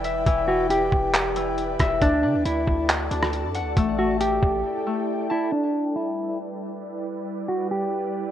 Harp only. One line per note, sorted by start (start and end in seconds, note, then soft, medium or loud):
0.00 0.25 E3 medium
0.00 1.19 A3 medium
0.05 1.77 E5 medium
0.27 0.47 E3 loud
0.48 1.35 E3 medium
1.36 2.07 E3 medium
1.80 3.52 E5 medium
2.02 2.23 D4 loud
2.23 3.10 D4 medium
3.11 5.91 D4 medium
3.55 5.16 F#5 medium
3.77 3.98 A3 medium
3.98 4.86 A3 medium
4.87 8.19 A3 medium
5.30 6.75 A5 medium